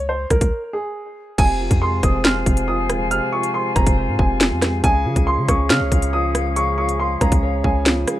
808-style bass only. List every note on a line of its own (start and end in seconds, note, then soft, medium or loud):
0.00 0.26 C#2 loud
0.30 0.41 C#2 loud
0.41 0.52 C#2 loud
1.38 1.69 F1 loud
1.71 2.02 F2 loud
2.03 2.45 F1 loud
2.46 2.91 F1 loud
2.90 3.07 D#1 loud
3.06 3.21 F1 loud
3.76 3.86 F1 loud
3.87 4.10 F1 loud
4.08 4.18 G#2 loud
4.19 4.53 F1 loud
4.51 4.82 F2 loud
4.84 5.07 C#2 loud
5.05 5.16 C#3 loud
5.16 5.39 C#2 loud
5.38 5.48 C#3 loud
5.49 5.71 C#2 loud
5.70 5.82 C#3 loud
5.81 5.91 C#2 loud
5.92 7.17 C#2 loud
7.21 7.31 C#2 loud
7.32 7.63 C#2 loud
7.64 8.06 C#2 loud